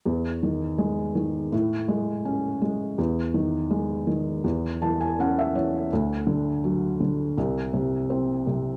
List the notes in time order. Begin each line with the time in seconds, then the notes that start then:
0.05 E2
0.43 D#3
0.78 G#3
1.15 D#3
1.52 A2
1.88 G#3
2.25 C#4
2.62 G#3
2.98 E2
3.34 D#3
3.71 G#3
4.07 D#3
4.44 E2
4.82 E3 A5
5.01 G#5
5.20 C#4 F#5
5.39 E5
5.55 E3 C#5
5.93 D2
6.27 D3
6.64 F#3
7.00 D3
7.38 C2
7.74 C3
8.10 C4
8.47 C3